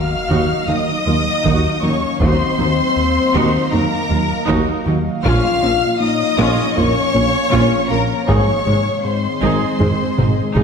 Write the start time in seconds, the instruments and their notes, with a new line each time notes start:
Already playing: analog synth bass D#2, ambient pad F#3 A#3 D#5 F5, french horn section F#4, violin section F5 F6, impact
0.30 double bass section D#2, cello section D#2, tuba D#2, analog synth bass D#2, synth arpeggio sound D#3, viola section D#4 F#4
0.68 cello section D#2, tuba D#2, double bass section D#2, analog synth bass D#3, viola section F#3 D#4, synth arpeggio sound A#3, french horn section D#4, violin section D#5 D#6
1.06 cello section D#2, analog synth bass D#2, double bass section D#2, tuba D#2, synth arpeggio sound F#3, viola section A#3 F4
1.44 cello section D#2, tuba D#2, analog synth bass D#2, double bass section D#2, synth arpeggio sound D#3, viola section D#4 F#4, taiko
1.81 double bass section D#2, cello section D#2, analog synth bass D#2, tuba D#2, viola section F#3 D#4, synth arpeggio sound F#3, french horn section C#4, violin section C#5 C#6
2.19 double bass section D#2, tuba D#2, analog synth bass D#2, cello section D#2, synth arpeggio sound D#3, ambient pad F#3 A#3 D#5 F5, french horn section C4, viola section D#4 F#4, violin section C5 C6, taiko
2.58 cello section D#2, double bass section D#2, tuba D#2, analog synth bass D#2, viola section F#3 D#4, synth arpeggio sound F#3
2.97 analog synth bass D#2
3.34 cello section D#2, double bass section D#2, analog synth bass D#2, tuba D#2, synth arpeggio sound D#3, viola section D#4 F#4
3.71 cello section D#2, double bass section D#2, tuba D#2, analog synth bass D#3, viola section F#3 D#4, french horn section A#3, synth arpeggio sound A#3, violin section A#4 A#5, taiko low-mid
4.10 double bass section D#2, cello section D#2, analog synth bass D#2, tuba D#2, synth arpeggio sound F#3, viola section A#3 F4
4.48 analog synth bass D#2, double bass section D#2, cello section D#2, tuba D#2, synth arpeggio sound D#3, viola section D#4 F#4, taiko
4.86 analog synth bass D#2, cello section D#2, double bass section D#2, tuba D#2, viola section F#3 D#4, synth arpeggio sound F#3
5.24 double bass section A#1, tuba A#1, cello section A#2, analog synth bass A#2, ambient pad F3 C#5, synth arpeggio sound A#3, viola section C#4 F4, french horn section F4, violin section F5 F6, taiko
5.62 tuba A#1, double bass section A#1, analog synth bass A#2, cello section A#2, viola section F3 A#3, synth arpeggio sound C#4
5.99 analog synth bass A#2, french horn section D#4, violin section D#5 D#6
6.38 tuba A#1, double bass section A#1, cello section A#2, analog synth bass A#2, synth arpeggio sound A#3, viola section C#4 F4
6.75 tuba A#1, double bass section A#1, cello section A#2, viola section F3 A#3, analog synth bass A#3, french horn section C#4, synth arpeggio sound F4, violin section C#5 C#6, taiko low-mid
7.14 tuba A#1, double bass section A#1, analog synth bass A#2, cello section A#2, viola section A#3 C#4, synth arpeggio sound C#4
7.51 tuba A#1, double bass section A#1, cello section A#2, analog synth bass A#2, synth arpeggio sound A#3, viola section C#4 F4, taiko
7.88 tuba A#1, double bass section A#1, cello section A#2, analog synth bass A#2, viola section F3 A#3, french horn section A#3, synth arpeggio sound C#4, violin section A#4 A#5
8.26 tuba G#1, double bass section G#1, cello section G#2, analog synth bass G#2, ambient pad D#3 G#3 G#4 D#5, synth arpeggio sound G#3, viola section D#4 G#4, french horn section C#5, violin section C#5 C#6, taiko
8.65 tuba G#1, double bass section G#1, cello section G#2, analog synth bass G#2, viola section C3 G#3, synth arpeggio sound C3
9.02 analog synth bass G#2, french horn section C4, violin section C5 C6
9.41 tuba G#1, double bass section G#1, cello section G#2, analog synth bass G#2, synth arpeggio sound G#3, viola section D#4 G#4
9.79 tuba G#1, double bass section G#1, cello section G#2, viola section G#3 C4, analog synth bass G#3, synth arpeggio sound D#4, taiko low-mid
10.17 tuba G#1, double bass section G#1, cello section G#2, analog synth bass G#2, synth arpeggio sound C4, viola section C4 D#4, taiko mid
10.56 double bass section G#1, tuba G#1, cello section G#2, analog synth bass G#2, synth arpeggio sound G#3, viola section D#4 G#4, taiko mid